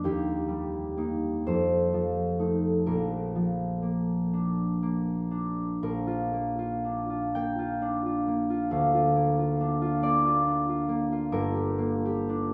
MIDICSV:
0, 0, Header, 1, 2, 480
1, 0, Start_track
1, 0, Key_signature, -2, "major"
1, 0, Tempo, 949367
1, 18, Time_signature, 6, 3, 24, 8
1, 1940, Tempo, 998336
1, 3860, Tempo, 870827
1, 5780, Tempo, 960000
1, 6392, End_track
2, 0, Start_track
2, 0, Title_t, "Harp"
2, 0, Program_c, 0, 46
2, 0, Note_on_c, 0, 58, 42
2, 0, Note_on_c, 0, 70, 81
2, 20, Note_on_c, 0, 39, 55
2, 25, Note_on_c, 0, 67, 71
2, 243, Note_on_c, 0, 55, 45
2, 487, Note_off_c, 0, 58, 0
2, 491, Note_on_c, 0, 58, 41
2, 495, Note_on_c, 0, 63, 41
2, 741, Note_on_c, 0, 72, 72
2, 743, Note_on_c, 0, 41, 53
2, 761, Note_off_c, 0, 55, 0
2, 761, Note_off_c, 0, 58, 0
2, 762, Note_off_c, 0, 39, 0
2, 762, Note_off_c, 0, 70, 0
2, 765, Note_off_c, 0, 67, 0
2, 980, Note_on_c, 0, 53, 41
2, 1205, Note_off_c, 0, 63, 0
2, 1208, Note_on_c, 0, 57, 35
2, 1211, Note_on_c, 0, 63, 40
2, 1448, Note_on_c, 0, 70, 62
2, 1451, Note_on_c, 0, 34, 48
2, 1469, Note_off_c, 0, 57, 0
2, 1469, Note_off_c, 0, 72, 0
2, 1470, Note_off_c, 0, 41, 0
2, 1470, Note_off_c, 0, 63, 0
2, 1690, Note_off_c, 0, 53, 0
2, 1696, Note_on_c, 0, 53, 39
2, 1932, Note_on_c, 0, 58, 37
2, 2179, Note_on_c, 0, 62, 34
2, 2409, Note_off_c, 0, 58, 0
2, 2415, Note_on_c, 0, 58, 37
2, 2643, Note_off_c, 0, 62, 0
2, 2649, Note_on_c, 0, 62, 37
2, 2891, Note_off_c, 0, 70, 0
2, 2892, Note_off_c, 0, 34, 0
2, 2897, Note_on_c, 0, 34, 46
2, 2898, Note_on_c, 0, 70, 69
2, 3014, Note_on_c, 0, 65, 43
2, 3133, Note_off_c, 0, 58, 0
2, 3139, Note_on_c, 0, 58, 42
2, 3255, Note_off_c, 0, 65, 0
2, 3261, Note_on_c, 0, 65, 41
2, 3380, Note_off_c, 0, 62, 0
2, 3386, Note_on_c, 0, 62, 38
2, 3501, Note_off_c, 0, 65, 0
2, 3507, Note_on_c, 0, 65, 43
2, 3583, Note_off_c, 0, 53, 0
2, 3626, Note_off_c, 0, 58, 0
2, 3629, Note_on_c, 0, 79, 79
2, 3632, Note_on_c, 0, 58, 41
2, 3736, Note_off_c, 0, 65, 0
2, 3742, Note_on_c, 0, 65, 42
2, 3848, Note_off_c, 0, 62, 0
2, 3854, Note_on_c, 0, 62, 43
2, 3978, Note_off_c, 0, 65, 0
2, 3984, Note_on_c, 0, 65, 42
2, 4099, Note_off_c, 0, 58, 0
2, 4105, Note_on_c, 0, 58, 41
2, 4222, Note_off_c, 0, 65, 0
2, 4228, Note_on_c, 0, 65, 42
2, 4344, Note_on_c, 0, 38, 54
2, 4345, Note_on_c, 0, 77, 65
2, 4371, Note_off_c, 0, 34, 0
2, 4467, Note_off_c, 0, 65, 0
2, 4474, Note_on_c, 0, 65, 42
2, 4585, Note_off_c, 0, 58, 0
2, 4591, Note_on_c, 0, 58, 45
2, 4709, Note_off_c, 0, 65, 0
2, 4716, Note_on_c, 0, 65, 43
2, 4831, Note_off_c, 0, 62, 0
2, 4838, Note_on_c, 0, 62, 44
2, 4848, Note_off_c, 0, 79, 0
2, 4906, Note_off_c, 0, 70, 0
2, 4946, Note_off_c, 0, 65, 0
2, 4953, Note_on_c, 0, 65, 44
2, 5062, Note_off_c, 0, 58, 0
2, 5067, Note_on_c, 0, 58, 45
2, 5072, Note_on_c, 0, 74, 76
2, 5186, Note_off_c, 0, 65, 0
2, 5193, Note_on_c, 0, 65, 43
2, 5308, Note_off_c, 0, 62, 0
2, 5314, Note_on_c, 0, 62, 43
2, 5430, Note_off_c, 0, 65, 0
2, 5436, Note_on_c, 0, 65, 44
2, 5538, Note_off_c, 0, 58, 0
2, 5545, Note_on_c, 0, 58, 46
2, 5666, Note_off_c, 0, 65, 0
2, 5673, Note_on_c, 0, 65, 45
2, 5783, Note_on_c, 0, 31, 55
2, 5784, Note_on_c, 0, 70, 76
2, 5794, Note_off_c, 0, 77, 0
2, 5795, Note_off_c, 0, 38, 0
2, 5804, Note_off_c, 0, 65, 0
2, 5897, Note_on_c, 0, 67, 45
2, 6009, Note_off_c, 0, 58, 0
2, 6015, Note_on_c, 0, 58, 50
2, 6144, Note_off_c, 0, 67, 0
2, 6150, Note_on_c, 0, 67, 49
2, 6262, Note_off_c, 0, 62, 0
2, 6268, Note_on_c, 0, 62, 49
2, 6382, Note_off_c, 0, 67, 0
2, 6392, Note_off_c, 0, 31, 0
2, 6392, Note_off_c, 0, 58, 0
2, 6392, Note_off_c, 0, 62, 0
2, 6392, Note_off_c, 0, 70, 0
2, 6392, Note_off_c, 0, 74, 0
2, 6392, End_track
0, 0, End_of_file